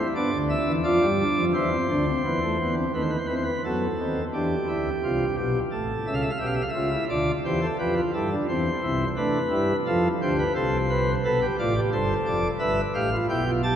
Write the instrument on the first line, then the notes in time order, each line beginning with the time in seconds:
pipe organ
0.00 E4
0.15 B3 D4 D5
0.33 D2 D3
0.49 E5
0.66 E2 E3
0.84 F2 F3 F4 D5
1.02 G2 G3
1.19 D4
1.37 F2 F3
1.54 E2 E3 E4 C5
1.72 C4
1.90 D2 D3 D4
2.08 C4
2.25 E2 E3 B3
2.42 A3
2.60 B3
2.77 C4
2.94 D#2 D#3 A3 B4
3.02 C5
3.10 B4
3.18 C5
3.26 E2 E3 C4 B4
3.35 C5
3.44 B4
3.65 F#2 F#3 B3 A4
4.00 D#2 D#3 C4
4.33 E2 E3 D4 G4
4.68 D2 D3 E4
5.03 C2 C3 F4
5.37 B1 B2 G4
5.72 A1 A2 A4
6.07 C#2 C#3 E5
6.14 F5
6.22 E5
6.30 F5
6.38 B1 B2 G4 E5
6.46 F5
6.53 E5
6.61 F5
6.70 E5
6.74 C#2 C#3 F4
6.93 E4
7.10 D2 D3 F4 D5
7.45 E2 E3 G4 C5
7.62 A4
7.79 F2 F3 G4 B4
7.97 F4
8.14 G2 G3 E4 A4
8.31 D4
8.48 E2 E3 C4 C5
8.83 C2 C3 E4
9.17 A3 D4 B4
9.51 G2 G3 E4
9.87 F2 F3 F4 A4
10.22 D2 D3 G4 C5
10.38 B4
10.55 C2 C3 A4 C5
10.90 B4
11.25 B1 B2 A4 B4
11.42 G4
11.59 A1 A2 F4 D5
11.75 G4
11.92 G1 G2 A4 C5
12.26 F1 F2 D5
12.59 G1 G2 B4 E5
12.94 A1 A2 G4 F5
13.12 F4
13.29 B1 B2 E4 G5
13.46 F4
13.63 G4 A5